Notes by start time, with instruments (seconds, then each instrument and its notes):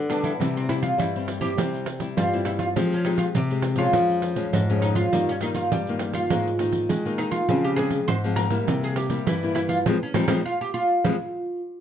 Already playing: nylon-string guitar D3
0.09 nylon-string guitar G3 B3 D4, oud D4, pandeiro
0.24 oud E4, pandeiro
0.40 nylon-string guitar C3 G3 C4 E4, pandeiro
0.57 oud C4, pandeiro
0.68 nylon-string guitar G3 C4 E4, oud E4, pandeiro
0.83 oud F4, pandeiro
0.98 nylon-string guitar G2 G3, oud E4, pandeiro
1.16 nylon-string guitar G3 C4 E4, pandeiro
1.28 pandeiro
1.41 nylon-string guitar G3 C4 E4, oud G4, pandeiro
1.57 nylon-string guitar C3 G3 C4 E4, pandeiro
1.74 pandeiro
1.86 pandeiro
2.00 nylon-string guitar G3 C4 E4, pandeiro
2.17 nylon-string guitar G2 G3, oud F4, pandeiro
2.33 nylon-string guitar G3 C4 E4, pandeiro
2.45 oud E4, pandeiro
2.59 oud F4, pandeiro
2.76 nylon-string guitar F3 G#3 C4 G4, pandeiro
2.92 oud C#4, pandeiro
3.04 nylon-string guitar G#3 C4 G4, oud D#4, pandeiro
3.18 oud F4, pandeiro
3.35 nylon-string guitar C3, oud G4, pandeiro
3.50 nylon-string guitar G#3 C4 G4, pandeiro
3.62 pandeiro
3.76 nylon-string guitar F3 G#3 C#4, oud F4, pandeiro
3.93 nylon-string guitar F2 F3, pandeiro
4.10 pandeiro
4.22 pandeiro
4.36 nylon-string guitar F3 G#3 C#4, pandeiro
4.53 nylon-string guitar F2 G#2, pandeiro
4.69 nylon-string guitar F3 G#3 C#4, pandeiro
4.82 oud D#4, pandeiro
4.95 oud F4, pandeiro
5.12 nylon-string guitar G2 D#3 G3 A#3 D#4, pandeiro
5.29 oud C#4, pandeiro
5.41 nylon-string guitar D#3 A#3 D#4, oud D#4, pandeiro
5.55 oud F4, pandeiro
5.72 nylon-string guitar G2 G3, oud G4, pandeiro
5.87 nylon-string guitar D#3 A#3 D#4, pandeiro
5.99 pandeiro
6.13 oud F4, pandeiro
6.30 nylon-string guitar G#2 D#3 G#3 A#3 D#4, pandeiro
6.47 pandeiro
6.59 nylon-string guitar D#3 A#3 D#4, pandeiro
6.72 pandeiro
6.89 nylon-string guitar D#3 G#3, pandeiro
7.05 nylon-string guitar D#3 A#3 D#4, pandeiro
7.18 oud D#4, pandeiro
7.31 oud F4, pandeiro
7.49 nylon-string guitar C#3 F3 G#3 C4, pandeiro
7.64 oud G4, pandeiro
7.76 nylon-string guitar F3 G#3 C4, oud G#4, pandeiro
7.90 pandeiro
8.08 nylon-string guitar G#2, oud C5, pandeiro
8.24 nylon-string guitar F3 G#3 C4, pandeiro
8.36 oud A#4, pandeiro
8.50 nylon-string guitar G3 A#3 E4, pandeiro
8.67 nylon-string guitar C3, pandeiro
8.83 oud G#4, pandeiro
8.96 oud G4, pandeiro
9.10 nylon-string guitar G3 A#3 E4, pandeiro
9.27 nylon-string guitar G2 E3, oud E4, pandeiro
9.43 nylon-string guitar G3 A#3 E4, pandeiro
9.55 oud E4, pandeiro
9.69 oud F4, pandeiro
9.86 nylon-string guitar F3 G3 G#3 C4, pandeiro
10.03 oud C#4
10.14 nylon-string guitar F3 G3 G#3 C4, oud D#4, pandeiro
10.28 nylon-string guitar F3 G3 G#3 C4, pandeiro
10.46 oud F4
10.61 oud G4
10.74 oud F4
11.04 nylon-string guitar F3 G3 G#3 C4, pandeiro